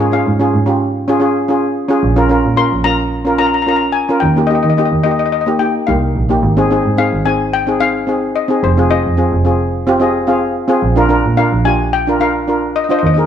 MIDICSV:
0, 0, Header, 1, 4, 480
1, 0, Start_track
1, 0, Tempo, 548948
1, 1783, Time_signature, 4, 2, 24, 8
1, 11597, End_track
2, 0, Start_track
2, 0, Title_t, "Steel pan"
2, 0, Program_c, 0, 114
2, 115, Note_on_c, 0, 77, 72
2, 556, Note_off_c, 0, 77, 0
2, 2250, Note_on_c, 0, 84, 94
2, 2485, Note_on_c, 0, 82, 90
2, 2503, Note_off_c, 0, 84, 0
2, 2938, Note_off_c, 0, 82, 0
2, 2960, Note_on_c, 0, 82, 89
2, 3021, Note_off_c, 0, 82, 0
2, 3031, Note_on_c, 0, 82, 64
2, 3088, Note_off_c, 0, 82, 0
2, 3098, Note_on_c, 0, 82, 73
2, 3156, Note_off_c, 0, 82, 0
2, 3167, Note_on_c, 0, 82, 64
2, 3212, Note_off_c, 0, 82, 0
2, 3222, Note_on_c, 0, 82, 78
2, 3280, Note_off_c, 0, 82, 0
2, 3291, Note_on_c, 0, 82, 67
2, 3371, Note_off_c, 0, 82, 0
2, 3432, Note_on_c, 0, 80, 76
2, 3673, Note_on_c, 0, 79, 76
2, 3693, Note_off_c, 0, 80, 0
2, 3907, Note_on_c, 0, 75, 73
2, 3934, Note_off_c, 0, 79, 0
2, 3967, Note_off_c, 0, 75, 0
2, 3978, Note_on_c, 0, 75, 56
2, 4036, Note_off_c, 0, 75, 0
2, 4047, Note_on_c, 0, 75, 62
2, 4098, Note_off_c, 0, 75, 0
2, 4108, Note_on_c, 0, 75, 57
2, 4170, Note_off_c, 0, 75, 0
2, 4181, Note_on_c, 0, 75, 60
2, 4235, Note_off_c, 0, 75, 0
2, 4245, Note_on_c, 0, 75, 55
2, 4328, Note_off_c, 0, 75, 0
2, 4403, Note_on_c, 0, 75, 75
2, 4459, Note_off_c, 0, 75, 0
2, 4469, Note_on_c, 0, 75, 56
2, 4530, Note_off_c, 0, 75, 0
2, 4540, Note_on_c, 0, 75, 63
2, 4586, Note_off_c, 0, 75, 0
2, 4596, Note_on_c, 0, 75, 58
2, 4645, Note_off_c, 0, 75, 0
2, 4655, Note_on_c, 0, 75, 64
2, 4720, Note_off_c, 0, 75, 0
2, 4731, Note_on_c, 0, 75, 54
2, 4810, Note_off_c, 0, 75, 0
2, 4891, Note_on_c, 0, 79, 73
2, 5131, Note_on_c, 0, 77, 68
2, 5142, Note_off_c, 0, 79, 0
2, 5475, Note_off_c, 0, 77, 0
2, 6106, Note_on_c, 0, 77, 86
2, 6327, Note_off_c, 0, 77, 0
2, 6344, Note_on_c, 0, 80, 84
2, 6588, Note_on_c, 0, 79, 94
2, 6590, Note_off_c, 0, 80, 0
2, 6824, Note_on_c, 0, 77, 91
2, 6832, Note_off_c, 0, 79, 0
2, 7306, Note_on_c, 0, 75, 73
2, 7318, Note_off_c, 0, 77, 0
2, 7413, Note_off_c, 0, 75, 0
2, 7552, Note_on_c, 0, 72, 75
2, 7787, Note_on_c, 0, 75, 76
2, 7795, Note_off_c, 0, 72, 0
2, 8232, Note_off_c, 0, 75, 0
2, 9944, Note_on_c, 0, 77, 85
2, 10188, Note_on_c, 0, 80, 86
2, 10194, Note_off_c, 0, 77, 0
2, 10433, Note_on_c, 0, 79, 95
2, 10436, Note_off_c, 0, 80, 0
2, 10674, Note_on_c, 0, 77, 81
2, 10679, Note_off_c, 0, 79, 0
2, 11156, Note_on_c, 0, 75, 75
2, 11168, Note_off_c, 0, 77, 0
2, 11219, Note_off_c, 0, 75, 0
2, 11229, Note_on_c, 0, 75, 53
2, 11283, Note_off_c, 0, 75, 0
2, 11294, Note_on_c, 0, 75, 68
2, 11346, Note_off_c, 0, 75, 0
2, 11356, Note_on_c, 0, 75, 65
2, 11415, Note_off_c, 0, 75, 0
2, 11424, Note_on_c, 0, 75, 63
2, 11480, Note_off_c, 0, 75, 0
2, 11490, Note_on_c, 0, 75, 53
2, 11550, Note_off_c, 0, 75, 0
2, 11597, End_track
3, 0, Start_track
3, 0, Title_t, "Steel pan"
3, 0, Program_c, 1, 114
3, 3, Note_on_c, 1, 68, 73
3, 67, Note_off_c, 1, 68, 0
3, 104, Note_on_c, 1, 61, 58
3, 113, Note_on_c, 1, 65, 56
3, 122, Note_on_c, 1, 68, 67
3, 255, Note_off_c, 1, 61, 0
3, 259, Note_off_c, 1, 65, 0
3, 263, Note_off_c, 1, 68, 0
3, 345, Note_on_c, 1, 61, 67
3, 354, Note_on_c, 1, 65, 62
3, 357, Note_on_c, 1, 68, 72
3, 495, Note_off_c, 1, 61, 0
3, 499, Note_off_c, 1, 65, 0
3, 501, Note_off_c, 1, 68, 0
3, 578, Note_on_c, 1, 61, 66
3, 584, Note_on_c, 1, 65, 60
3, 592, Note_on_c, 1, 67, 66
3, 799, Note_off_c, 1, 61, 0
3, 802, Note_off_c, 1, 65, 0
3, 806, Note_off_c, 1, 67, 0
3, 942, Note_on_c, 1, 61, 80
3, 953, Note_on_c, 1, 65, 73
3, 956, Note_on_c, 1, 68, 89
3, 1015, Note_off_c, 1, 61, 0
3, 1020, Note_off_c, 1, 65, 0
3, 1022, Note_off_c, 1, 68, 0
3, 1047, Note_on_c, 1, 61, 72
3, 1057, Note_on_c, 1, 65, 64
3, 1064, Note_on_c, 1, 68, 80
3, 1204, Note_off_c, 1, 61, 0
3, 1209, Note_off_c, 1, 65, 0
3, 1213, Note_off_c, 1, 68, 0
3, 1297, Note_on_c, 1, 61, 71
3, 1303, Note_on_c, 1, 65, 66
3, 1314, Note_on_c, 1, 68, 75
3, 1517, Note_off_c, 1, 61, 0
3, 1520, Note_off_c, 1, 65, 0
3, 1526, Note_off_c, 1, 68, 0
3, 1648, Note_on_c, 1, 61, 79
3, 1658, Note_on_c, 1, 65, 72
3, 1665, Note_on_c, 1, 68, 89
3, 1772, Note_off_c, 1, 61, 0
3, 1777, Note_off_c, 1, 65, 0
3, 1780, Note_off_c, 1, 68, 0
3, 1891, Note_on_c, 1, 61, 78
3, 1895, Note_on_c, 1, 65, 70
3, 1903, Note_on_c, 1, 70, 80
3, 1968, Note_off_c, 1, 61, 0
3, 1970, Note_off_c, 1, 65, 0
3, 1974, Note_off_c, 1, 70, 0
3, 2004, Note_on_c, 1, 61, 77
3, 2013, Note_on_c, 1, 65, 70
3, 2019, Note_on_c, 1, 70, 77
3, 2162, Note_off_c, 1, 61, 0
3, 2166, Note_off_c, 1, 65, 0
3, 2169, Note_off_c, 1, 70, 0
3, 2243, Note_on_c, 1, 61, 66
3, 2246, Note_on_c, 1, 65, 62
3, 2257, Note_on_c, 1, 70, 73
3, 2401, Note_off_c, 1, 61, 0
3, 2403, Note_off_c, 1, 65, 0
3, 2408, Note_off_c, 1, 70, 0
3, 2486, Note_on_c, 1, 61, 67
3, 2494, Note_on_c, 1, 65, 58
3, 2500, Note_on_c, 1, 70, 64
3, 2710, Note_off_c, 1, 61, 0
3, 2714, Note_off_c, 1, 65, 0
3, 2718, Note_off_c, 1, 70, 0
3, 2840, Note_on_c, 1, 61, 67
3, 2853, Note_on_c, 1, 65, 62
3, 2857, Note_on_c, 1, 70, 73
3, 2922, Note_off_c, 1, 61, 0
3, 2928, Note_off_c, 1, 65, 0
3, 2930, Note_off_c, 1, 70, 0
3, 2958, Note_on_c, 1, 61, 62
3, 2964, Note_on_c, 1, 65, 56
3, 2975, Note_on_c, 1, 70, 71
3, 3118, Note_off_c, 1, 61, 0
3, 3121, Note_off_c, 1, 65, 0
3, 3126, Note_off_c, 1, 70, 0
3, 3203, Note_on_c, 1, 61, 65
3, 3211, Note_on_c, 1, 65, 56
3, 3216, Note_on_c, 1, 70, 67
3, 3429, Note_off_c, 1, 61, 0
3, 3433, Note_off_c, 1, 65, 0
3, 3435, Note_off_c, 1, 70, 0
3, 3577, Note_on_c, 1, 61, 66
3, 3579, Note_on_c, 1, 65, 59
3, 3589, Note_on_c, 1, 70, 77
3, 3695, Note_off_c, 1, 61, 0
3, 3696, Note_off_c, 1, 65, 0
3, 3701, Note_off_c, 1, 70, 0
3, 3814, Note_on_c, 1, 58, 66
3, 3821, Note_on_c, 1, 63, 59
3, 3828, Note_on_c, 1, 67, 73
3, 3888, Note_off_c, 1, 58, 0
3, 3892, Note_off_c, 1, 63, 0
3, 3895, Note_off_c, 1, 67, 0
3, 3929, Note_on_c, 1, 58, 60
3, 3936, Note_on_c, 1, 63, 58
3, 3941, Note_on_c, 1, 67, 70
3, 4083, Note_off_c, 1, 58, 0
3, 4087, Note_off_c, 1, 63, 0
3, 4089, Note_off_c, 1, 67, 0
3, 4173, Note_on_c, 1, 58, 64
3, 4184, Note_on_c, 1, 63, 57
3, 4190, Note_on_c, 1, 67, 74
3, 4325, Note_off_c, 1, 58, 0
3, 4331, Note_off_c, 1, 63, 0
3, 4334, Note_off_c, 1, 67, 0
3, 4407, Note_on_c, 1, 58, 61
3, 4417, Note_on_c, 1, 63, 54
3, 4424, Note_on_c, 1, 67, 67
3, 4630, Note_off_c, 1, 58, 0
3, 4636, Note_off_c, 1, 63, 0
3, 4639, Note_off_c, 1, 67, 0
3, 4777, Note_on_c, 1, 58, 67
3, 4786, Note_on_c, 1, 63, 63
3, 4789, Note_on_c, 1, 67, 72
3, 4849, Note_off_c, 1, 58, 0
3, 4854, Note_off_c, 1, 63, 0
3, 4855, Note_off_c, 1, 67, 0
3, 4888, Note_on_c, 1, 58, 60
3, 4898, Note_on_c, 1, 63, 55
3, 4907, Note_on_c, 1, 67, 65
3, 5042, Note_off_c, 1, 58, 0
3, 5047, Note_off_c, 1, 63, 0
3, 5052, Note_off_c, 1, 67, 0
3, 5139, Note_on_c, 1, 58, 60
3, 5143, Note_on_c, 1, 63, 58
3, 5150, Note_on_c, 1, 67, 65
3, 5356, Note_off_c, 1, 58, 0
3, 5359, Note_off_c, 1, 63, 0
3, 5362, Note_off_c, 1, 67, 0
3, 5500, Note_on_c, 1, 58, 70
3, 5509, Note_on_c, 1, 63, 60
3, 5513, Note_on_c, 1, 67, 75
3, 5617, Note_off_c, 1, 58, 0
3, 5621, Note_off_c, 1, 63, 0
3, 5623, Note_off_c, 1, 67, 0
3, 5743, Note_on_c, 1, 60, 76
3, 5749, Note_on_c, 1, 63, 75
3, 5755, Note_on_c, 1, 68, 89
3, 5813, Note_off_c, 1, 60, 0
3, 5816, Note_off_c, 1, 63, 0
3, 5819, Note_off_c, 1, 68, 0
3, 5864, Note_on_c, 1, 60, 72
3, 5871, Note_on_c, 1, 63, 68
3, 5877, Note_on_c, 1, 68, 78
3, 6011, Note_off_c, 1, 60, 0
3, 6014, Note_off_c, 1, 63, 0
3, 6018, Note_off_c, 1, 68, 0
3, 6097, Note_on_c, 1, 60, 64
3, 6102, Note_on_c, 1, 63, 59
3, 6113, Note_on_c, 1, 68, 73
3, 6248, Note_off_c, 1, 60, 0
3, 6250, Note_off_c, 1, 63, 0
3, 6256, Note_off_c, 1, 68, 0
3, 6341, Note_on_c, 1, 60, 63
3, 6347, Note_on_c, 1, 63, 61
3, 6354, Note_on_c, 1, 68, 68
3, 6558, Note_off_c, 1, 60, 0
3, 6561, Note_off_c, 1, 63, 0
3, 6565, Note_off_c, 1, 68, 0
3, 6705, Note_on_c, 1, 60, 66
3, 6708, Note_on_c, 1, 63, 61
3, 6720, Note_on_c, 1, 68, 78
3, 6774, Note_off_c, 1, 60, 0
3, 6776, Note_off_c, 1, 63, 0
3, 6782, Note_off_c, 1, 68, 0
3, 6821, Note_on_c, 1, 60, 57
3, 6827, Note_on_c, 1, 63, 54
3, 6837, Note_on_c, 1, 68, 69
3, 6970, Note_off_c, 1, 60, 0
3, 6973, Note_off_c, 1, 63, 0
3, 6978, Note_off_c, 1, 68, 0
3, 7055, Note_on_c, 1, 60, 64
3, 7064, Note_on_c, 1, 63, 56
3, 7072, Note_on_c, 1, 68, 69
3, 7276, Note_off_c, 1, 60, 0
3, 7280, Note_off_c, 1, 63, 0
3, 7284, Note_off_c, 1, 68, 0
3, 7416, Note_on_c, 1, 60, 69
3, 7425, Note_on_c, 1, 63, 59
3, 7437, Note_on_c, 1, 68, 76
3, 7536, Note_off_c, 1, 60, 0
3, 7540, Note_off_c, 1, 63, 0
3, 7546, Note_off_c, 1, 68, 0
3, 7672, Note_on_c, 1, 60, 66
3, 7677, Note_on_c, 1, 65, 63
3, 7686, Note_on_c, 1, 68, 76
3, 7739, Note_off_c, 1, 60, 0
3, 7741, Note_off_c, 1, 65, 0
3, 7745, Note_off_c, 1, 68, 0
3, 7782, Note_on_c, 1, 60, 61
3, 7791, Note_on_c, 1, 65, 58
3, 7799, Note_on_c, 1, 68, 68
3, 7932, Note_off_c, 1, 60, 0
3, 7936, Note_off_c, 1, 65, 0
3, 7940, Note_off_c, 1, 68, 0
3, 8020, Note_on_c, 1, 60, 66
3, 8025, Note_on_c, 1, 65, 59
3, 8029, Note_on_c, 1, 68, 70
3, 8171, Note_off_c, 1, 60, 0
3, 8173, Note_off_c, 1, 65, 0
3, 8175, Note_off_c, 1, 68, 0
3, 8261, Note_on_c, 1, 60, 62
3, 8266, Note_on_c, 1, 65, 56
3, 8274, Note_on_c, 1, 68, 72
3, 8480, Note_off_c, 1, 60, 0
3, 8482, Note_off_c, 1, 65, 0
3, 8486, Note_off_c, 1, 68, 0
3, 8629, Note_on_c, 1, 60, 82
3, 8635, Note_on_c, 1, 65, 78
3, 8643, Note_on_c, 1, 67, 90
3, 8698, Note_off_c, 1, 60, 0
3, 8701, Note_off_c, 1, 65, 0
3, 8705, Note_off_c, 1, 67, 0
3, 8741, Note_on_c, 1, 60, 82
3, 8751, Note_on_c, 1, 65, 70
3, 8752, Note_on_c, 1, 75, 60
3, 8759, Note_on_c, 1, 68, 84
3, 8892, Note_off_c, 1, 60, 0
3, 8897, Note_off_c, 1, 65, 0
3, 8901, Note_off_c, 1, 68, 0
3, 8972, Note_off_c, 1, 75, 0
3, 8981, Note_on_c, 1, 60, 76
3, 8986, Note_on_c, 1, 65, 67
3, 8987, Note_on_c, 1, 77, 65
3, 8997, Note_on_c, 1, 68, 83
3, 9201, Note_off_c, 1, 60, 0
3, 9203, Note_off_c, 1, 65, 0
3, 9209, Note_off_c, 1, 68, 0
3, 9338, Note_on_c, 1, 60, 84
3, 9344, Note_on_c, 1, 65, 78
3, 9352, Note_on_c, 1, 68, 90
3, 9434, Note_off_c, 1, 77, 0
3, 9459, Note_off_c, 1, 60, 0
3, 9462, Note_off_c, 1, 65, 0
3, 9466, Note_off_c, 1, 68, 0
3, 9582, Note_on_c, 1, 62, 77
3, 9592, Note_on_c, 1, 65, 79
3, 9596, Note_on_c, 1, 70, 94
3, 9656, Note_off_c, 1, 62, 0
3, 9661, Note_off_c, 1, 65, 0
3, 9663, Note_off_c, 1, 70, 0
3, 9694, Note_on_c, 1, 62, 74
3, 9703, Note_on_c, 1, 65, 72
3, 9710, Note_on_c, 1, 70, 83
3, 9850, Note_off_c, 1, 62, 0
3, 9854, Note_off_c, 1, 65, 0
3, 9858, Note_off_c, 1, 70, 0
3, 9944, Note_on_c, 1, 62, 70
3, 9950, Note_on_c, 1, 65, 62
3, 9962, Note_on_c, 1, 70, 74
3, 10095, Note_off_c, 1, 62, 0
3, 10098, Note_off_c, 1, 65, 0
3, 10104, Note_off_c, 1, 70, 0
3, 10185, Note_on_c, 1, 62, 61
3, 10194, Note_on_c, 1, 65, 61
3, 10203, Note_on_c, 1, 67, 66
3, 10405, Note_off_c, 1, 62, 0
3, 10409, Note_off_c, 1, 65, 0
3, 10414, Note_off_c, 1, 67, 0
3, 10556, Note_on_c, 1, 62, 70
3, 10565, Note_on_c, 1, 65, 63
3, 10572, Note_on_c, 1, 70, 75
3, 10624, Note_off_c, 1, 62, 0
3, 10629, Note_off_c, 1, 65, 0
3, 10632, Note_off_c, 1, 70, 0
3, 10668, Note_on_c, 1, 62, 59
3, 10675, Note_on_c, 1, 65, 56
3, 10684, Note_on_c, 1, 70, 70
3, 10819, Note_off_c, 1, 62, 0
3, 10822, Note_off_c, 1, 65, 0
3, 10827, Note_off_c, 1, 70, 0
3, 10908, Note_on_c, 1, 62, 59
3, 10917, Note_on_c, 1, 65, 57
3, 10924, Note_on_c, 1, 70, 70
3, 11127, Note_off_c, 1, 62, 0
3, 11131, Note_off_c, 1, 65, 0
3, 11135, Note_off_c, 1, 70, 0
3, 11273, Note_on_c, 1, 62, 65
3, 11280, Note_on_c, 1, 65, 63
3, 11286, Note_on_c, 1, 72, 77
3, 11389, Note_off_c, 1, 62, 0
3, 11393, Note_off_c, 1, 65, 0
3, 11396, Note_off_c, 1, 72, 0
3, 11512, Note_on_c, 1, 63, 65
3, 11521, Note_on_c, 1, 68, 57
3, 11531, Note_on_c, 1, 70, 70
3, 11583, Note_off_c, 1, 63, 0
3, 11588, Note_off_c, 1, 68, 0
3, 11593, Note_off_c, 1, 70, 0
3, 11597, End_track
4, 0, Start_track
4, 0, Title_t, "Double bass"
4, 0, Program_c, 2, 43
4, 0, Note_on_c, 2, 44, 79
4, 149, Note_off_c, 2, 44, 0
4, 231, Note_on_c, 2, 44, 72
4, 417, Note_off_c, 2, 44, 0
4, 467, Note_on_c, 2, 44, 72
4, 1480, Note_off_c, 2, 44, 0
4, 1777, Note_on_c, 2, 34, 85
4, 2061, Note_off_c, 2, 34, 0
4, 2144, Note_on_c, 2, 46, 70
4, 2331, Note_off_c, 2, 46, 0
4, 2384, Note_on_c, 2, 34, 70
4, 3397, Note_off_c, 2, 34, 0
4, 3695, Note_on_c, 2, 39, 84
4, 3979, Note_off_c, 2, 39, 0
4, 4060, Note_on_c, 2, 51, 77
4, 4247, Note_off_c, 2, 51, 0
4, 4301, Note_on_c, 2, 39, 66
4, 4946, Note_off_c, 2, 39, 0
4, 5143, Note_on_c, 2, 36, 69
4, 5358, Note_off_c, 2, 36, 0
4, 5382, Note_on_c, 2, 34, 71
4, 5597, Note_off_c, 2, 34, 0
4, 5623, Note_on_c, 2, 32, 81
4, 5904, Note_off_c, 2, 32, 0
4, 5992, Note_on_c, 2, 44, 73
4, 6175, Note_off_c, 2, 44, 0
4, 6231, Note_on_c, 2, 32, 66
4, 7244, Note_off_c, 2, 32, 0
4, 7546, Note_on_c, 2, 29, 83
4, 7828, Note_off_c, 2, 29, 0
4, 7915, Note_on_c, 2, 41, 74
4, 8098, Note_off_c, 2, 41, 0
4, 8151, Note_on_c, 2, 29, 72
4, 9166, Note_off_c, 2, 29, 0
4, 9466, Note_on_c, 2, 34, 85
4, 9750, Note_off_c, 2, 34, 0
4, 9838, Note_on_c, 2, 46, 74
4, 10022, Note_off_c, 2, 46, 0
4, 10076, Note_on_c, 2, 34, 75
4, 11092, Note_off_c, 2, 34, 0
4, 11396, Note_on_c, 2, 39, 88
4, 11597, Note_off_c, 2, 39, 0
4, 11597, End_track
0, 0, End_of_file